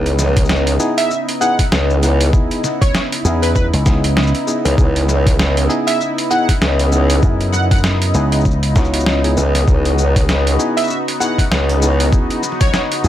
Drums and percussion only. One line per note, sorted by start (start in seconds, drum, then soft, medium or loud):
0.06 closed hi-hat soft
0.06 shaker soft
0.19 snare soft
0.19 shaker medium
0.22 snare soft
0.25 snare soft
0.28 snare soft
0.34 kick loud
0.34 snare soft
0.34 closed hi-hat medium
0.34 shaker soft
0.45 shaker soft
0.49 snare loud
0.49 shaker soft
0.55 shaker soft
0.67 closed hi-hat medium
0.67 shaker soft
0.80 shaker medium
0.98 closed hi-hat medium
0.98 shaker soft
1.11 shaker soft
1.29 closed hi-hat medium
1.29 shaker soft
1.41 shaker medium
1.59 kick medium
1.59 closed hi-hat medium
1.59 shaker soft
1.72 snare loud
1.72 shaker soft
1.90 shaker soft
2.03 closed hi-hat soft
2.03 shaker medium
2.21 closed hi-hat medium
2.21 shaker soft
2.33 kick loud
2.33 shaker soft
2.51 closed hi-hat soft
2.51 shaker soft
2.64 snare soft
2.64 shaker medium
2.82 kick loud
2.82 closed hi-hat medium
2.82 shaker soft
2.95 snare loud
2.95 shaker soft
3.12 closed hi-hat medium
3.12 shaker soft
3.25 shaker medium
3.43 closed hi-hat medium
3.43 shaker soft
3.56 kick medium
3.56 shaker soft
3.74 closed hi-hat medium
3.74 shaker soft
3.86 kick loud
3.86 snare medium
3.86 shaker medium
4.04 closed hi-hat medium
4.04 shaker soft
4.17 snare loud
4.17 snare soft
4.17 shaker soft
4.23 shaker soft
4.27 shaker soft
4.35 closed hi-hat soft
4.35 shaker soft
4.47 shaker medium
4.66 snare soft
4.66 closed hi-hat medium
4.66 shaker soft
4.78 kick loud
4.78 shaker soft
4.96 closed hi-hat soft
4.96 shaker soft
5.09 snare soft
5.09 shaker medium
5.27 kick loud
5.27 closed hi-hat medium
5.27 shaker soft
5.39 snare loud
5.39 shaker soft
5.57 closed hi-hat medium
5.57 shaker soft
5.70 shaker medium
5.88 closed hi-hat medium
5.88 shaker soft
6.01 shaker soft
6.18 closed hi-hat medium
6.18 shaker soft
6.31 shaker medium
6.49 kick medium
6.49 closed hi-hat medium
6.49 shaker soft
6.62 snare loud
6.62 shaker soft
6.79 closed hi-hat soft
6.79 shaker soft
6.92 shaker medium
7.10 closed hi-hat medium
7.10 shaker soft
7.23 kick loud
7.23 shaker soft
7.41 closed hi-hat soft
7.41 shaker soft
7.54 snare soft
7.54 shaker medium
7.71 kick loud
7.71 closed hi-hat medium
7.78 shaker soft
7.84 snare loud
7.84 shaker soft
8.02 closed hi-hat medium
8.02 shaker soft
8.14 shaker medium
8.32 closed hi-hat medium
8.32 shaker soft
8.41 shaker soft
8.45 kick medium
8.45 shaker soft
8.51 shaker soft
8.63 closed hi-hat medium
8.63 shaker soft
8.76 kick loud
8.76 snare medium
8.76 shaker medium
8.84 shaker soft
8.94 closed hi-hat medium
9.00 shaker soft
9.06 snare loud
9.06 snare soft
9.24 closed hi-hat soft
9.37 shaker medium
9.55 snare soft
9.55 closed hi-hat medium
9.55 shaker soft
9.68 kick loud
9.68 shaker soft
9.85 closed hi-hat soft
9.85 shaker soft
9.98 shaker medium
10.16 kick loud
10.16 closed hi-hat medium
10.16 shaker soft
10.29 snare loud
10.29 shaker soft
10.47 closed hi-hat medium
10.47 shaker soft
10.60 shaker medium
10.78 closed hi-hat medium
10.78 shaker soft
10.81 shaker soft
10.84 shaker soft
10.87 shaker soft
10.90 shaker soft
11.08 closed hi-hat soft
11.08 shaker soft
11.21 shaker medium
11.39 kick medium
11.39 closed hi-hat medium
11.39 shaker soft
11.52 snare loud
11.52 shaker soft
11.69 closed hi-hat soft
11.69 shaker soft
11.82 shaker medium
12.00 closed hi-hat medium
12.13 kick loud
12.13 shaker soft
12.31 closed hi-hat soft
12.31 shaker soft
12.43 snare soft
12.43 shaker medium
12.52 snare soft
12.61 kick loud
12.61 snare soft
12.61 closed hi-hat medium
12.61 shaker soft
12.67 snare soft
12.74 snare loud
12.74 shaker soft
12.92 closed hi-hat soft
12.92 shaker soft
13.04 shaker medium